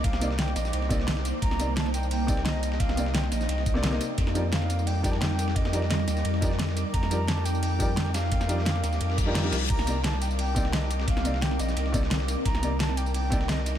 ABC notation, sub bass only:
X:1
M:4/4
L:1/8
Q:1/4=174
K:Cm
V:1 name="Sub bass" clef=bass
C,,3 B,,, C,,3 z | C,,4- C,, C,,3 | C,,3 B,,, C,,3 z | F,,4- F,, F,,3 |
F,,3 E,, F,,3 z | F,,4- F,, F,,3 | F,,3 E,, F,,3 C,, | C,,4- C,, C,,3 |
C,,3 B,,, C,,3 z | C,,4- C,, C,,3 |]